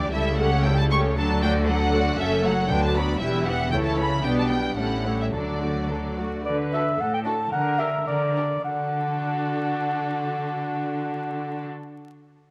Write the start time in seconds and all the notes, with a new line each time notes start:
Already playing: E3 D4 G4 D5
0.13 C#2 C#3 G3 E4 A4 E5
0.39 G3 A3 C#4 G4 A4 C#5 F#5
0.64 G3 E4 A4 G5
0.79 A5
0.91 G3 A3 C#4 G4 A4 C#5 C#6
1.17 D2 D3 F#3 D4 A4 A5
1.41 F#3 A3 F#4 A4 D5 G5
1.66 F#3 D4 A4 F#5
1.92 F#3 A3 F#4 A4 D5
2.18 F#1 F#2 F#3 A3 C#4 A4 E5
2.44 F#3 A3 F#4 C#5 F#5
2.69 D2 D3 D4 F#4 B4 G5
2.84 A5
2.96 F#3 B3 F#4 D5 B5
3.20 E1 E2 E3 G3 E4 G4 B4 E5
3.46 E3 B3 G4 E5 F#5
3.71 C#2 C#3 A3 E4 A4 C#5 G5
3.85 A5
3.97 E3 C#4 A4 C#5 B5
4.24 B1 B2 G3 B3 D4 G4 D5 G5
4.38 A5
4.49 G3 B3 B4 G5
4.77 A1 A2 G3 C#4 E4 A4 F#5
5.04 A3 E4 G4 C#5
5.21 E5
5.33 D2 D3 F#3 D4 A4 D5
5.61 A3 F#4 D5
5.90 F#3 D4 A4
6.18 A3 F#4 D5
6.46 D3 B4 D5
6.72 D4 F#4 A4 E5
7.00 A2 A4 F#5
7.14 G5
7.25 D4 F#4 A4 A5
7.52 D3 A#4 F#5
7.79 D4 G4 A#4 E5
8.07 D3 A#4 D5
8.37 D4 G4 A#4
8.65 D3 D4 F#4 A4 F#5